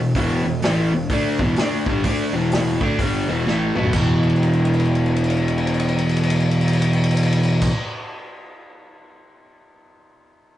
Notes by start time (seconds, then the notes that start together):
Already playing: E1
0.00 E2 B2
0.15 E1 E2 B2 E3, kick, open hi-hat
0.44 E1 E2 B2
0.62 A1 A2 E3 A3, snare, open hi-hat
0.91 E1 E2 B2
1.10 D2 D3 A3 D4, kick, open hi-hat
1.39 E1 E2 B2 E3, kick
1.56 D2 D3 A3 D4, snare, open hi-hat
1.86 G1 G2 D3 G3, kick
2.04 D2 D3 A3 D4, kick, open hi-hat
2.33 E1 E2 B2 E3
2.51 snare, open hi-hat
2.81 D2 D3 A3 D4, kick
2.99 G1 G2 D3 G3, kick, open hi-hat
3.27 E1 E2 B2 E3
3.45 A1 A2 E3 A3, snare
3.75 B1 B2 F#3 B3, mid tom
3.84 floor tom
3.92 E1 E2 B2, kick, crash
3.96 E3
4.23 crash
4.29 ride
4.36 crash
4.43 ride
4.53 crash
4.65 ride
4.74 crash
4.80 ride
4.85 crash
4.95 ride
5.06 crash
5.16 ride
5.24 crash
5.30 ride
5.37 crash
5.48 ride
5.58 crash
5.67 ride
5.74 crash
5.80 ride
5.89 crash
5.98 ride
6.09 crash
6.17 ride
6.23 crash
6.30 ride
6.40 crash
6.51 ride
6.61 crash
6.68 ride
6.73 crash
6.82 ride
6.93 crash
7.04 ride
7.11 crash
7.17 ride
7.23 crash
7.33 ride
7.43 crash
7.62 kick, crash